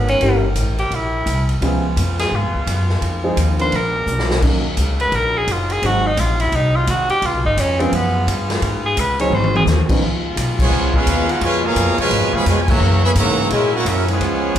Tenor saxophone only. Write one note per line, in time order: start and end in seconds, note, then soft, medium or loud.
0.09 0.41 C#4 loud
0.79 0.96 G4 medium
0.95 1.50 E4 medium
2.20 2.37 G#4 medium
2.35 2.91 F4 medium
3.61 3.77 C5 loud
3.76 4.31 A#4 loud
5.01 5.17 B4 loud
5.16 5.39 A#4 loud
5.37 5.53 G#4 loud
5.52 5.74 F4 medium
5.72 5.87 G#4 loud
5.86 6.08 F#4 loud
6.07 6.21 D#4 loud
6.20 6.42 F4 loud
6.41 6.57 E4 medium
6.55 6.77 D#4 loud
6.76 6.92 F4 loud
6.90 7.10 F#4 medium
7.10 7.27 G4 loud
7.26 7.45 F4 medium
7.46 7.61 D#4 loud
7.60 7.81 C#4 medium
7.80 7.96 C4 medium
7.94 8.28 B3 medium
8.86 9.01 G#4 loud
9.00 9.20 B4 medium
9.21 9.36 C#5 loud
9.35 9.55 C5 medium
9.56 9.63 G#4 loud